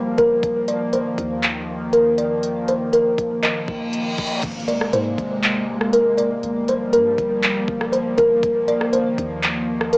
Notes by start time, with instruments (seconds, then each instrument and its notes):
Already playing: 808-style bass G1, analog synth pad F3 G3 A#3, kalimba C5
0.18 808-style bass G1, kalimba A#4, kick, closed hi-hat
0.43 808-style bass D#1, analog synth pad D#3, kick, closed hi-hat
0.68 kalimba D5, closed hi-hat
0.93 808-style bass D#1, kalimba C5, closed hi-hat
1.18 808-style bass D#2, kick, closed hi-hat
1.43 clap, closed hi-hat
1.93 kalimba A#4, closed hi-hat
2.18 kalimba D5, closed hi-hat
2.43 closed hi-hat
2.68 kalimba C5, closed hi-hat
2.93 kalimba A#4, closed hi-hat
3.18 808-style bass D#1, kick, closed hi-hat
3.43 kalimba D#5, clap, closed hi-hat, reverse cymbal
3.68 808-style bass D#1, kick
3.93 closed hi-hat
4.18 808-style bass D#1, kick, closed hi-hat
4.26 closed hi-hat
4.35 closed hi-hat
4.43 808-style bass G#1, analog synth pad C3 G#3 A#3, kick, closed hi-hat, crash, impact
4.51 closed hi-hat
4.60 closed hi-hat
4.68 kalimba D5, closed hi-hat
4.81 cross-stick
4.93 808-style bass G#2, kalimba C5, closed hi-hat
5.18 808-style bass G#1, kick, closed hi-hat
5.43 clap, closed hi-hat
5.81 cross-stick
5.93 kalimba A#4, closed hi-hat
6.17 kalimba D5, closed hi-hat
6.43 808-style bass G1, analog synth pad F3 G3, closed hi-hat
6.68 kalimba C5, closed hi-hat
6.93 808-style bass G2, kalimba A#4, closed hi-hat
7.18 808-style bass G1, kick, closed hi-hat
7.43 clap, closed hi-hat
7.68 808-style bass G1, kick
7.81 cross-stick
7.92 kalimba C5, closed hi-hat
8.18 808-style bass G1, kalimba A#4, kick, closed hi-hat
8.43 808-style bass D#1, analog synth pad D#3, kick, closed hi-hat
8.68 kalimba D5, closed hi-hat
8.81 cross-stick
8.93 808-style bass D#1, kalimba C5, closed hi-hat
9.18 808-style bass D#2, kick, closed hi-hat
9.43 clap, closed hi-hat
9.81 cross-stick
9.93 kalimba A#4, closed hi-hat